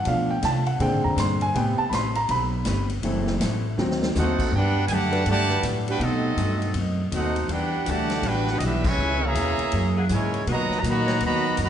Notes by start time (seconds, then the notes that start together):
0.04 B2 F3 A3 D4 F5, ride
0.30 G5
0.41 B2 C3 F3 A3 D4 A5, snare, hi-hat pedal, ride
0.66 F#5, ride
0.79 A#2 D3 G#3 C4 D4 G#4 G5, ride
0.91 G#2
1.04 F2 A#5
1.16 G2 A#2 G#3 C4 D4 C6, snare, hi-hat pedal, ride
1.41 G#5, ride
1.54 A2 C3 G3 A3 B3 C4 G4 B4 G5, ride
1.78 A5, muted upright bass stroke
1.89 A1 A3 C4 G4 B4 B5, snare, hi-hat pedal, ride
1.94 C6
2.15 A#5, ride
2.28 B1 A3 C4 G4 B4 B5, ride
2.65 G1 A3 C4 G4 B4, snare, hi-hat pedal, ride
2.90 ride
3.02 F#1 E3 F#3 A3 C4 E4 A4, ride
3.27 snare
3.40 A1 F#3 C4 E4 A4, snare, hi-hat pedal, ride
3.76 D2 D3 D#3 F#3 C4 D#4, snare
3.91 snare
4.03 snare
4.14 D#2 D3 F#3 A3 C4 D#4 F#4, snare, hi-hat pedal
4.18 D#4 A4 C5 F#5
4.39 kick, crash
4.51 G2 F#3 B3 D4 G4
4.56 D4 B4 F#5 G5
4.88 F#2 G2 D3 F#3 A3 B3 D4 G#5, hi-hat pedal, ride
4.93 G4 D5 F#5 A5
5.10 G3 D4 F#4 B4, ride
5.26 G2 D3 F#3 G3 A3 B3, ride
5.30 D4 G4 D5 F#5 A5
5.48 G3 D4 F#4 B4, snare
5.63 G2 A2 F#3 B3 D4, hi-hat pedal, ride
5.87 B3 D4 F#4 G4 B4 G5, ride
5.99 B2 F#3 A3 C4 D#4, ride
6.04 C4 F#4 A4 D#5
6.37 G2 B2 A3 C4 D#4, hi-hat pedal, ride
6.62 ride
6.74 F#2 B2 A3 C4, ride
6.78 D#4
7.11 D#2 B2 A3 C4 D#4 F#4 F#5, hi-hat pedal, ride
7.16 D#4 A4 C5
7.36 ride
7.48 E2 E3 G3 B3 D4 G4 F#5 G5, ride
7.52 D4 F#4 B4
7.86 D2 B2 D3 E3 G3 A3 D4 F#4, hi-hat pedal, ride
7.90 G4 D5 F#5 A5
8.10 snare, ride
8.22 A1 E3 G3 G4, ride
8.26 B3 D4 F#4 B4 G5
8.47 B3 D4 F#4 F#5, snare
8.51 D4 G4 B4
8.59 B1 E3 G3 B3 D4 E4 D#5, hi-hat pedal, ride
8.64 D4 F#4 G4 B4 E5
8.84 E3 G#3 C#4 E5 C#6, kick, crash
8.89 B4 G#5
8.98 C#2 C#3 B3 E4
9.02 G#4
9.24 B2 E3 A#3 G#4 C#5 E5 A#5
9.34 E2 C#3 B3 E4 G#4, hi-hat pedal, ride
9.59 muted upright bass stroke, ride
9.71 F#2 F#3 A#3 E4 G#4, ride
9.96 F#3 A#3 E4 G#4
10.09 G#2 C#3 E3 F#3 G#3 A#3 E4 G#4 A#4 C#5, hi-hat pedal, ride
10.13 E4 G#5
10.34 ride
10.46 A#2 B2 D#3 F#3 A#3 D#4 F#4 B4, ride
10.51 F#4 B4 D#5 A#5
10.70 muted upright bass stroke, snare
10.80 A#2 A#5
10.84 B2 D#3 F#3 A#3 D#4, hi-hat pedal, ride
10.90 F#4 D#5 A#5 B5
11.06 F#3 B3 D#4 C#5, snare, ride
11.20 D#2 B2 D#3 F#3 A#3 B3, ride
11.25 D#4 F#4 D#5 A#5 B5
11.57 F#2 B2 F#3 A#3 B3 D#4, hi-hat pedal, ride
11.61 D#3 F#3 F#4 D#5 A#5 B5